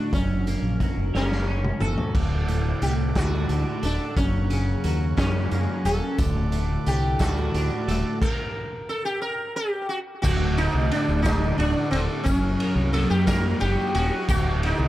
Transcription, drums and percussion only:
0.13 kick, closed hi-hat
0.47 closed hi-hat
0.80 kick, closed hi-hat
1.15 snare
1.32 snare
1.65 mid tom
1.80 mid tom
1.98 floor tom
2.15 kick, crash
2.48 closed hi-hat
2.82 closed hi-hat
3.15 kick, snare, closed hi-hat
3.49 closed hi-hat
3.83 closed hi-hat
4.17 kick, closed hi-hat
4.50 closed hi-hat
4.84 closed hi-hat
5.18 kick, snare, closed hi-hat
5.51 closed hi-hat
5.85 closed hi-hat
6.18 kick, closed hi-hat, tambourine
6.52 closed hi-hat
6.86 closed hi-hat
7.19 kick, snare, closed hi-hat, tambourine
7.37 tambourine
7.54 closed hi-hat
7.70 tambourine
7.88 closed hi-hat
8.22 kick, crash
10.24 kick, crash, tambourine
10.58 ride
10.91 ride
11.09 tambourine
11.25 kick, snare, ride, tambourine
11.60 ride
11.93 ride
12.26 kick, ride, tambourine
12.60 ride
12.94 ride
13.11 tambourine
13.27 kick, snare, ride, tambourine
13.61 ride
13.95 ride
14.28 kick, crash, tambourine
14.63 ride

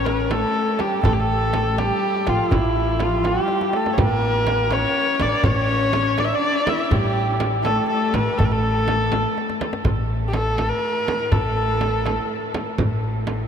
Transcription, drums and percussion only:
0.06 tombak tek, frame drum
0.31 tombak tek, frame drum
0.67 tombak ka
0.79 tombak tek, frame drum
0.91 tombak ka
1.03 tombak dum, frame drum
1.53 tombak tek, frame drum
1.78 tombak tek, frame drum
2.14 tombak ka
2.27 tombak tek, frame drum
2.51 tombak dum, frame drum
2.64 tombak ka
2.75 tombak ka
3.00 tombak tek, frame drum
3.24 tombak tek, frame drum
3.48 tombak tek
3.61 tombak ka
3.73 tombak tek
3.86 tombak ka
3.98 frame drum, tombak dum
4.47 tombak tek, frame drum
4.71 tombak tek, frame drum
5.10 tombak ka
5.20 tombak tek, frame drum
5.32 tombak ka
5.44 tombak dum, frame drum
5.93 tombak tek, frame drum
6.18 tombak tek, frame drum
6.55 tombak ka
6.67 tombak tek, frame drum
6.80 tombak ka
6.91 frame drum, tombak dum
7.40 tombak tek, frame drum
7.65 tombak tek, frame drum
8.03 tombak ka
8.14 tombak tek, frame drum
8.28 tombak ka
8.39 frame drum, tombak dum
8.54 tombak ka
8.88 tombak tek, frame drum
9.12 tombak tek, frame drum
9.38 tombak tek
9.50 tombak ka
9.61 tombak tek, frame drum
9.73 tombak ka
9.85 tombak dum, frame drum
10.09 tombak ka
10.33 tombak tek, frame drum
10.58 tombak tek, frame drum
11.08 tombak tek, frame drum
11.21 tombak ka
11.32 frame drum, tombak dum
11.57 tombak ka
11.81 tombak tek, frame drum
12.06 tombak tek, frame drum
12.54 tombak tek, frame drum
12.67 tombak ka
12.78 frame drum, tombak dum
13.04 tombak ka
13.27 tombak tek, frame drum

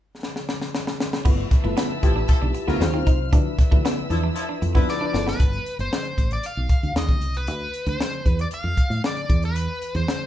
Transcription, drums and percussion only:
0.23 snare
0.36 snare
0.49 snare
0.61 snare
0.75 snare
0.87 snare
1.00 snare
1.13 snare
1.25 kick, crash
1.51 kick, snare, closed hi-hat
1.77 snare, closed hi-hat
2.03 kick, closed hi-hat
2.28 kick, closed hi-hat
2.55 closed hi-hat
2.69 snare
2.81 snare, closed hi-hat
3.07 kick, closed hi-hat
3.33 kick, closed hi-hat
3.59 kick, snare, closed hi-hat
3.72 kick
3.85 snare, closed hi-hat
4.11 closed hi-hat
4.36 closed hi-hat
4.62 closed hi-hat
4.75 kick
4.89 snare
5.14 snare
5.28 snare
5.40 kick, closed hi-hat
5.53 closed hi-hat
5.66 closed hi-hat
5.79 closed hi-hat
5.93 snare
6.05 closed hi-hat
6.18 kick, closed hi-hat
6.31 closed hi-hat
6.43 closed hi-hat
6.69 kick, closed hi-hat
6.83 closed hi-hat
6.96 snare
7.09 kick, closed hi-hat
7.21 closed hi-hat
7.34 closed hi-hat
7.47 closed hi-hat
7.74 closed hi-hat
7.87 closed hi-hat
8.01 snare
8.12 closed hi-hat
8.26 kick, closed hi-hat
8.39 closed hi-hat
8.51 closed hi-hat
8.77 kick, closed hi-hat
8.91 closed hi-hat
9.04 snare
9.17 closed hi-hat
9.30 kick, closed hi-hat
9.42 closed hi-hat
9.56 closed hi-hat
9.82 closed hi-hat
9.95 closed hi-hat
10.08 snare

